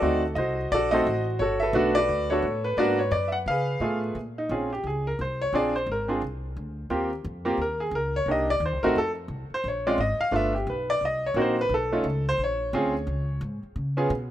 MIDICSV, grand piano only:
0, 0, Header, 1, 2, 480
1, 0, Start_track
1, 0, Tempo, 343249
1, 42, Time_signature, 4, 2, 24, 8
1, 20008, End_track
2, 0, Start_track
2, 0, Title_t, "Grand piano"
2, 0, Program_c, 0, 0
2, 0, Note_on_c, 0, 69, 68
2, 0, Note_on_c, 0, 74, 89
2, 31, Note_on_c, 0, 57, 67
2, 33, Note_on_c, 0, 60, 65
2, 33, Note_on_c, 0, 63, 66
2, 42, Note_on_c, 0, 66, 69
2, 291, Note_off_c, 0, 74, 0
2, 303, Note_off_c, 0, 57, 0
2, 305, Note_off_c, 0, 60, 0
2, 305, Note_off_c, 0, 63, 0
2, 309, Note_off_c, 0, 66, 0
2, 494, Note_on_c, 0, 75, 81
2, 533, Note_on_c, 0, 72, 61
2, 542, Note_on_c, 0, 66, 54
2, 769, Note_off_c, 0, 69, 0
2, 954, Note_off_c, 0, 75, 0
2, 1005, Note_on_c, 0, 74, 99
2, 1024, Note_off_c, 0, 66, 0
2, 1038, Note_on_c, 0, 69, 65
2, 1045, Note_on_c, 0, 66, 67
2, 1275, Note_on_c, 0, 75, 92
2, 1280, Note_off_c, 0, 74, 0
2, 1284, Note_on_c, 0, 57, 72
2, 1286, Note_off_c, 0, 69, 0
2, 1296, Note_on_c, 0, 63, 57
2, 1297, Note_off_c, 0, 72, 0
2, 1298, Note_on_c, 0, 60, 65
2, 1300, Note_off_c, 0, 66, 0
2, 1307, Note_on_c, 0, 69, 72
2, 1318, Note_on_c, 0, 72, 61
2, 1321, Note_on_c, 0, 66, 59
2, 1457, Note_off_c, 0, 57, 0
2, 1463, Note_off_c, 0, 60, 0
2, 1463, Note_off_c, 0, 63, 0
2, 1468, Note_off_c, 0, 69, 0
2, 1733, Note_off_c, 0, 75, 0
2, 1926, Note_off_c, 0, 72, 0
2, 1928, Note_off_c, 0, 66, 0
2, 1947, Note_on_c, 0, 73, 81
2, 1981, Note_on_c, 0, 66, 59
2, 1982, Note_on_c, 0, 69, 62
2, 2233, Note_on_c, 0, 76, 88
2, 2253, Note_off_c, 0, 69, 0
2, 2261, Note_off_c, 0, 73, 0
2, 2269, Note_on_c, 0, 71, 61
2, 2274, Note_on_c, 0, 69, 61
2, 2429, Note_off_c, 0, 66, 0
2, 2439, Note_on_c, 0, 57, 74
2, 2445, Note_on_c, 0, 59, 72
2, 2450, Note_on_c, 0, 66, 88
2, 2451, Note_on_c, 0, 62, 69
2, 2708, Note_off_c, 0, 57, 0
2, 2711, Note_off_c, 0, 59, 0
2, 2713, Note_off_c, 0, 66, 0
2, 2714, Note_off_c, 0, 62, 0
2, 2725, Note_on_c, 0, 74, 101
2, 2731, Note_off_c, 0, 71, 0
2, 2741, Note_off_c, 0, 76, 0
2, 2752, Note_on_c, 0, 71, 62
2, 2756, Note_on_c, 0, 66, 61
2, 3171, Note_off_c, 0, 69, 0
2, 3215, Note_on_c, 0, 73, 79
2, 3221, Note_off_c, 0, 66, 0
2, 3222, Note_on_c, 0, 59, 55
2, 3224, Note_on_c, 0, 57, 61
2, 3227, Note_off_c, 0, 74, 0
2, 3237, Note_on_c, 0, 62, 56
2, 3242, Note_on_c, 0, 66, 68
2, 3247, Note_on_c, 0, 69, 56
2, 3386, Note_off_c, 0, 59, 0
2, 3387, Note_off_c, 0, 57, 0
2, 3393, Note_off_c, 0, 62, 0
2, 3396, Note_off_c, 0, 66, 0
2, 3650, Note_off_c, 0, 71, 0
2, 3698, Note_on_c, 0, 71, 87
2, 3712, Note_off_c, 0, 73, 0
2, 3851, Note_off_c, 0, 69, 0
2, 3885, Note_on_c, 0, 74, 82
2, 3887, Note_off_c, 0, 71, 0
2, 3888, Note_on_c, 0, 58, 73
2, 3894, Note_on_c, 0, 59, 71
2, 3896, Note_on_c, 0, 62, 66
2, 3904, Note_on_c, 0, 66, 90
2, 3919, Note_on_c, 0, 71, 63
2, 4152, Note_off_c, 0, 58, 0
2, 4155, Note_off_c, 0, 59, 0
2, 4156, Note_off_c, 0, 62, 0
2, 4160, Note_off_c, 0, 66, 0
2, 4160, Note_off_c, 0, 74, 0
2, 4180, Note_on_c, 0, 73, 79
2, 4359, Note_on_c, 0, 74, 83
2, 4369, Note_off_c, 0, 73, 0
2, 4584, Note_on_c, 0, 76, 60
2, 4590, Note_off_c, 0, 74, 0
2, 4647, Note_on_c, 0, 78, 78
2, 4659, Note_off_c, 0, 76, 0
2, 4717, Note_off_c, 0, 78, 0
2, 4805, Note_off_c, 0, 71, 0
2, 4861, Note_on_c, 0, 77, 86
2, 4890, Note_on_c, 0, 68, 63
2, 4899, Note_on_c, 0, 71, 63
2, 5319, Note_off_c, 0, 68, 0
2, 5327, Note_on_c, 0, 59, 54
2, 5331, Note_on_c, 0, 57, 63
2, 5332, Note_on_c, 0, 65, 56
2, 5340, Note_on_c, 0, 68, 67
2, 5575, Note_off_c, 0, 77, 0
2, 5776, Note_off_c, 0, 71, 0
2, 5805, Note_off_c, 0, 59, 0
2, 5807, Note_off_c, 0, 57, 0
2, 5808, Note_off_c, 0, 65, 0
2, 5812, Note_off_c, 0, 68, 0
2, 6129, Note_on_c, 0, 63, 71
2, 6293, Note_off_c, 0, 63, 0
2, 6305, Note_on_c, 0, 60, 51
2, 6306, Note_on_c, 0, 65, 54
2, 6313, Note_on_c, 0, 61, 50
2, 6313, Note_on_c, 0, 68, 64
2, 6561, Note_off_c, 0, 60, 0
2, 6562, Note_off_c, 0, 65, 0
2, 6565, Note_off_c, 0, 61, 0
2, 6565, Note_off_c, 0, 68, 0
2, 6608, Note_on_c, 0, 67, 71
2, 6773, Note_off_c, 0, 67, 0
2, 6807, Note_on_c, 0, 68, 71
2, 7074, Note_off_c, 0, 68, 0
2, 7093, Note_on_c, 0, 70, 75
2, 7255, Note_off_c, 0, 70, 0
2, 7289, Note_on_c, 0, 72, 71
2, 7555, Note_off_c, 0, 72, 0
2, 7572, Note_on_c, 0, 73, 92
2, 7735, Note_off_c, 0, 73, 0
2, 7741, Note_on_c, 0, 60, 64
2, 7741, Note_on_c, 0, 62, 60
2, 7744, Note_on_c, 0, 65, 56
2, 7756, Note_on_c, 0, 68, 74
2, 7768, Note_on_c, 0, 74, 78
2, 8000, Note_off_c, 0, 60, 0
2, 8000, Note_off_c, 0, 62, 0
2, 8002, Note_off_c, 0, 65, 0
2, 8007, Note_off_c, 0, 68, 0
2, 8035, Note_off_c, 0, 74, 0
2, 8051, Note_on_c, 0, 72, 79
2, 8214, Note_off_c, 0, 72, 0
2, 8272, Note_on_c, 0, 70, 72
2, 8507, Note_on_c, 0, 60, 60
2, 8512, Note_on_c, 0, 62, 56
2, 8521, Note_on_c, 0, 68, 66
2, 8523, Note_on_c, 0, 65, 59
2, 8527, Note_off_c, 0, 70, 0
2, 8669, Note_off_c, 0, 60, 0
2, 8672, Note_off_c, 0, 62, 0
2, 8677, Note_off_c, 0, 68, 0
2, 8678, Note_off_c, 0, 65, 0
2, 9652, Note_on_c, 0, 58, 62
2, 9654, Note_on_c, 0, 60, 58
2, 9655, Note_on_c, 0, 65, 57
2, 9664, Note_on_c, 0, 67, 70
2, 9916, Note_off_c, 0, 58, 0
2, 9917, Note_off_c, 0, 60, 0
2, 9917, Note_off_c, 0, 65, 0
2, 9922, Note_off_c, 0, 67, 0
2, 10419, Note_on_c, 0, 58, 76
2, 10419, Note_on_c, 0, 60, 62
2, 10428, Note_on_c, 0, 65, 70
2, 10435, Note_on_c, 0, 67, 77
2, 10586, Note_off_c, 0, 58, 0
2, 10586, Note_off_c, 0, 60, 0
2, 10591, Note_off_c, 0, 65, 0
2, 10594, Note_off_c, 0, 67, 0
2, 10649, Note_on_c, 0, 70, 77
2, 10912, Note_on_c, 0, 68, 72
2, 10916, Note_off_c, 0, 70, 0
2, 11086, Note_off_c, 0, 68, 0
2, 11121, Note_on_c, 0, 70, 80
2, 11392, Note_off_c, 0, 70, 0
2, 11414, Note_on_c, 0, 73, 88
2, 11575, Note_on_c, 0, 58, 54
2, 11577, Note_off_c, 0, 73, 0
2, 11582, Note_on_c, 0, 62, 49
2, 11584, Note_on_c, 0, 63, 50
2, 11591, Note_on_c, 0, 67, 60
2, 11626, Note_on_c, 0, 75, 83
2, 11838, Note_off_c, 0, 58, 0
2, 11841, Note_off_c, 0, 62, 0
2, 11842, Note_off_c, 0, 63, 0
2, 11846, Note_off_c, 0, 67, 0
2, 11885, Note_off_c, 0, 75, 0
2, 11891, Note_on_c, 0, 74, 88
2, 12056, Note_off_c, 0, 74, 0
2, 12104, Note_on_c, 0, 72, 72
2, 12346, Note_on_c, 0, 70, 82
2, 12363, Note_on_c, 0, 57, 72
2, 12363, Note_on_c, 0, 60, 74
2, 12363, Note_on_c, 0, 66, 86
2, 12364, Note_off_c, 0, 72, 0
2, 12366, Note_on_c, 0, 63, 69
2, 12518, Note_off_c, 0, 66, 0
2, 12519, Note_off_c, 0, 57, 0
2, 12519, Note_off_c, 0, 60, 0
2, 12520, Note_off_c, 0, 63, 0
2, 12523, Note_off_c, 0, 70, 0
2, 12559, Note_on_c, 0, 69, 86
2, 12727, Note_off_c, 0, 69, 0
2, 13344, Note_on_c, 0, 72, 89
2, 13503, Note_off_c, 0, 72, 0
2, 13536, Note_on_c, 0, 73, 69
2, 13797, Note_on_c, 0, 56, 73
2, 13798, Note_on_c, 0, 61, 60
2, 13800, Note_off_c, 0, 73, 0
2, 13800, Note_on_c, 0, 74, 74
2, 13804, Note_on_c, 0, 60, 62
2, 13811, Note_on_c, 0, 65, 78
2, 13956, Note_off_c, 0, 56, 0
2, 13956, Note_off_c, 0, 61, 0
2, 13960, Note_off_c, 0, 60, 0
2, 13963, Note_off_c, 0, 65, 0
2, 13970, Note_off_c, 0, 74, 0
2, 13991, Note_on_c, 0, 75, 82
2, 14268, Note_off_c, 0, 75, 0
2, 14272, Note_on_c, 0, 77, 88
2, 14430, Note_on_c, 0, 59, 54
2, 14431, Note_on_c, 0, 62, 63
2, 14433, Note_on_c, 0, 57, 63
2, 14446, Note_off_c, 0, 77, 0
2, 14448, Note_on_c, 0, 65, 70
2, 14483, Note_on_c, 0, 76, 91
2, 14706, Note_off_c, 0, 59, 0
2, 14706, Note_off_c, 0, 62, 0
2, 14708, Note_off_c, 0, 57, 0
2, 14715, Note_off_c, 0, 65, 0
2, 14749, Note_on_c, 0, 67, 63
2, 14754, Note_off_c, 0, 76, 0
2, 14925, Note_off_c, 0, 67, 0
2, 14957, Note_on_c, 0, 71, 67
2, 15231, Note_off_c, 0, 71, 0
2, 15241, Note_on_c, 0, 74, 93
2, 15411, Note_off_c, 0, 74, 0
2, 15455, Note_on_c, 0, 75, 85
2, 15720, Note_off_c, 0, 75, 0
2, 15752, Note_on_c, 0, 73, 86
2, 15888, Note_on_c, 0, 58, 76
2, 15892, Note_on_c, 0, 60, 62
2, 15892, Note_on_c, 0, 63, 61
2, 15896, Note_on_c, 0, 66, 75
2, 15907, Note_off_c, 0, 73, 0
2, 15962, Note_on_c, 0, 72, 73
2, 16155, Note_off_c, 0, 58, 0
2, 16157, Note_off_c, 0, 60, 0
2, 16157, Note_off_c, 0, 63, 0
2, 16159, Note_off_c, 0, 66, 0
2, 16214, Note_off_c, 0, 72, 0
2, 16236, Note_on_c, 0, 71, 93
2, 16389, Note_off_c, 0, 71, 0
2, 16418, Note_on_c, 0, 69, 83
2, 16675, Note_on_c, 0, 57, 62
2, 16676, Note_on_c, 0, 61, 63
2, 16678, Note_on_c, 0, 63, 58
2, 16684, Note_on_c, 0, 65, 71
2, 16835, Note_off_c, 0, 57, 0
2, 16835, Note_off_c, 0, 61, 0
2, 16836, Note_off_c, 0, 63, 0
2, 16839, Note_off_c, 0, 65, 0
2, 17117, Note_off_c, 0, 69, 0
2, 17182, Note_on_c, 0, 72, 97
2, 17342, Note_off_c, 0, 72, 0
2, 17390, Note_on_c, 0, 73, 81
2, 17811, Note_on_c, 0, 60, 71
2, 17819, Note_on_c, 0, 61, 71
2, 17825, Note_on_c, 0, 68, 79
2, 17827, Note_on_c, 0, 65, 68
2, 18076, Note_off_c, 0, 60, 0
2, 18080, Note_off_c, 0, 61, 0
2, 18083, Note_off_c, 0, 68, 0
2, 18084, Note_off_c, 0, 65, 0
2, 18743, Note_off_c, 0, 73, 0
2, 19535, Note_on_c, 0, 61, 69
2, 19540, Note_on_c, 0, 59, 71
2, 19542, Note_on_c, 0, 65, 61
2, 19547, Note_on_c, 0, 68, 80
2, 19705, Note_off_c, 0, 61, 0
2, 19707, Note_off_c, 0, 59, 0
2, 19708, Note_off_c, 0, 65, 0
2, 19711, Note_off_c, 0, 68, 0
2, 20008, End_track
0, 0, End_of_file